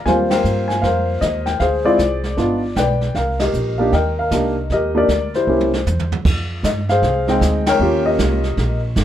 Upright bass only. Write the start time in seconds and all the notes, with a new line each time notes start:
0.06 D#2
0.44 G2
0.83 F2
1.22 D#2
1.60 D2
1.99 C2
2.37 G1
2.76 B1
3.15 C2
3.54 A#1
3.92 D#2
4.31 C2
4.70 D#2
5.08 D2
5.47 C2
5.86 E2
6.25 F2
6.63 G2
7.02 C2
7.41 D2
7.79 D#2
8.19 C2
8.57 A#1
8.96 G1